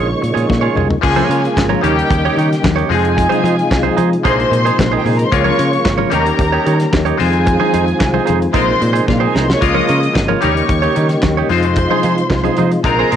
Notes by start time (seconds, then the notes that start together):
Already playing: A#1 C#3 F3 G#3 A#3 C#4 D#4 G#4 C#5 C#6
0.08 muted clean electric guitar stroke
0.22 A#2, muted clean electric guitar stroke, closed hi-hat
0.34 A#2 F4 G#4 C#5, closed hi-hat
0.49 A#2, muted clean electric guitar stroke, kick, snare, muted conga, high conga
0.61 F4 G#4 C#5
0.76 C2 F4 G#4 C#5, mid tom, muted conga, low conga
0.91 floor tom
1.01 C#2 C#3 F3 G#3 A#3 C#4 F4 G#4 G#5, muted clean electric guitar stroke, kick, crash, muted conga
1.16 F4 A#4 C#5, closed hi-hat, high conga
1.29 C#3 F4 A#4 C#5, closed hi-hat
1.45 closed hi-hat
1.56 G#1, muted clean electric guitar stroke, kick, snare, clap, muted conga
1.69 F4 A#4 C#5, high conga
1.81 D#2 C#3 D#3 G3 A#3 C#4 D#4 G4 C#5 G5, closed hi-hat, low conga
1.99 closed hi-hat
2.10 D#2, muted clean electric guitar stroke, kick, closed hi-hat, muted conga
2.25 D#4 G4 C#5
2.37 D#3 D#4 G4 C#5, closed hi-hat, muted conga
2.53 snare, closed hi-hat
2.63 D#2, muted clean electric guitar stroke, kick, snare, clap, muted conga, high conga
2.76 D#4 G4 C#5, closed hi-hat
2.89 F2 C3 F3 G#3 C4 D#4 F4 G#4 G#5, muted clean electric guitar stroke, open hi-hat, low conga
3.04 muted clean electric guitar stroke, closed hi-hat
3.17 muted clean electric guitar stroke, kick, closed hi-hat, muted conga
3.29 D#4 G#4 C5, closed hi-hat, high conga
3.44 F3 D#4 G#4 C5, closed hi-hat, muted conga
3.59 closed hi-hat
3.71 C2, muted clean electric guitar stroke, kick, snare, clap
3.83 D#4 G#4 C5, high conga
3.97 F3 D#4 G#4 C5, closed hi-hat, muted conga, low conga
4.11 muted clean electric guitar stroke, closed hi-hat
4.23 A#1 F3 G#3 A#3 C4 D#4 G#4 C5 C6, kick, closed hi-hat
4.36 muted clean electric guitar stroke, closed hi-hat
4.51 A#2, muted clean electric guitar stroke, closed hi-hat, muted conga
4.65 D#4 G#4 C5, closed hi-hat
4.78 A#1, muted clean electric guitar stroke, kick, snare, clap, muted conga, high conga
4.92 D#4 G#4 C5
4.98 G4 G5
5.05 A#2 D#4 G#4 C5 G#5, open hi-hat, low conga
5.15 A#4 A#5, closed hi-hat
5.24 C5 C6
5.32 C#2 C#3 F3 G#3 A#3 C#4 F4 A#4 C#5 C#6, muted clean electric guitar stroke, kick, closed hi-hat, muted conga
5.45 F4 A#4 C#5, high conga
5.59 C#3 F4 A#4 C#5, closed hi-hat
5.72 muted clean electric guitar stroke, closed hi-hat
5.85 G#1, muted clean electric guitar stroke, kick, snare, clap
5.98 F4 A#4 C#5, high conga
6.10 D#2 D#3 G3 A#3 C#4 D#4 G4 A#4 C#5 A#5, closed hi-hat, muted conga, low conga
6.26 closed hi-hat
6.39 D#2, muted clean electric guitar stroke, kick, closed hi-hat, muted conga
6.52 D#4 G4 C#5
6.66 D#3 D#4 G4 C#5, closed hi-hat
6.80 muted clean electric guitar stroke, snare, closed hi-hat
6.93 D#2, muted clean electric guitar stroke, kick, snare, clap, muted conga, high conga
7.05 D#4 G4 C#5, closed hi-hat
7.17 F2 F3 G#3 C4 D#4 F4 G#4 C5 G#5, open hi-hat, low conga
7.33 muted clean electric guitar stroke, closed hi-hat
7.46 muted clean electric guitar stroke, kick, closed hi-hat
7.60 D#4 G#4 C5, high conga
7.73 F2 D#4 G#4 C5, closed hi-hat, muted conga
7.88 closed hi-hat
7.99 C2, muted clean electric guitar stroke, kick, snare, clap, muted conga
8.14 D#4 G#4 C5, high conga
8.25 F2 D#4 G#4 C5, closed hi-hat, low conga
8.41 muted clean electric guitar stroke, closed hi-hat
8.53 A#1 C3 G#3 A#3 C4 D#4 F4 G#4 A#4 C5 C6, kick, closed hi-hat, high conga
8.66 muted clean electric guitar stroke
8.81 A#2, muted clean electric guitar stroke, closed hi-hat, muted conga
8.93 D#4 G#4 C5, closed hi-hat
9.08 A#2 F4 F5, kick, snare, high conga
9.17 G4 G#4 C5 G5
9.21 D#4 G#4 G#5
9.34 C2 D#4 G#4 A#4 C5 A#5, snare, low conga
9.44 C5 C6
9.50 C#5 C#6, snare
9.61 C#2 C#3 G#3 A#3 C#4 F4 A#4 D#5 D#6, muted clean electric guitar stroke, kick, closed hi-hat, muted conga
9.74 F4 A#4 C#5, high conga
9.88 C#3 F4 A#4 C#5, closed hi-hat, muted conga
10.00 muted clean electric guitar stroke, closed hi-hat
10.13 G#1, muted clean electric guitar stroke, kick, snare, clap
10.28 F4 A#4 C#5, high conga
10.41 D#2 C#3 G3 A#3 C#4 D#4 G4 A#4 C#5 C#6, closed hi-hat, muted conga, low conga
10.57 closed hi-hat
10.69 D#2, muted clean electric guitar stroke, kick, closed hi-hat
10.82 D#4 G4 C#5, closed hi-hat
10.95 D#3 D#4 G4 C#5, closed hi-hat
11.09 muted clean electric guitar stroke, snare, closed hi-hat
11.22 D#2, muted clean electric guitar stroke, kick, snare, clap, high conga
11.37 D#4 G4 C#5
11.49 F2 C3 F3 G#3 C4 D#4 F4 C5 C6, muted clean electric guitar stroke, open hi-hat, muted conga, low conga
11.63 muted clean electric guitar stroke, closed hi-hat
11.76 muted clean electric guitar stroke, kick, closed hi-hat, muted conga
11.91 D#4 G#4 C5, high conga
12.03 F3 D#4 G#4 C5, closed hi-hat
12.17 muted clean electric guitar stroke, closed hi-hat
12.30 C2, muted clean electric guitar stroke, kick, snare, clap, muted conga
12.44 D#4 G#4 C5, closed hi-hat, high conga
12.57 F3 D#4 G#4 C5, closed hi-hat, muted conga, low conga
12.71 muted clean electric guitar stroke, closed hi-hat
12.84 A#1 G#3 A#3 C4 D#4 F4 A#4 A#5, muted clean electric guitar stroke, kick, closed hi-hat, muted conga
12.99 D#4 G#4 C5
13.11 A#2 D#4 G#4 C5, closed hi-hat